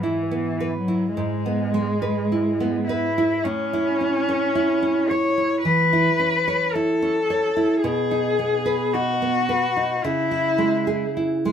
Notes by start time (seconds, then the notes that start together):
Already playing: G#2 B4
0.03 E3 E4
0.31 B3
0.60 B4
0.79 F#3
0.88 E4
1.16 G#2 G#3
1.46 B3
1.74 G#3
2.02 B4
2.32 E4
2.60 B3
2.88 E4 B4
3.18 E4
3.45 A2 C#4
3.73 E4
4.01 C#4
4.29 C#5
4.55 E4
4.82 C#4
5.09 C#5
5.38 E4
5.64 E3 B4
5.93 E4
6.20 C#4
6.48 C#5
6.73 E4 A4
7.02 C#4
7.30 C#5
7.57 E4
7.82 B2 G#4
8.11 D#4
8.39 B3
8.66 B4
8.94 D#4 F#4
9.22 B3
9.49 B4
9.77 D#4
10.04 C#3 E4
10.31 E4
10.58 G#3
10.87 G#4
11.17 E4
11.45 G#3